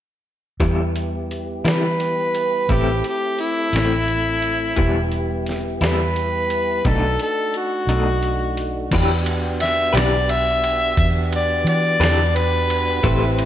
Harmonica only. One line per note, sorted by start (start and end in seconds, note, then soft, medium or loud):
1.67 2.73 B4 medium
2.71 3.04 G4 medium
3.09 3.43 G4 medium
3.41 5.43 E4 medium
5.86 6.90 B4 medium
6.88 7.20 A4 medium
7.22 7.59 A4 medium
7.57 8.89 F#4 medium
9.62 9.98 E5 medium
9.97 10.33 D5 medium
10.31 11.30 E5 medium
11.36 11.67 D5 medium
11.68 12.37 D5 medium
12.36 13.45 B4 medium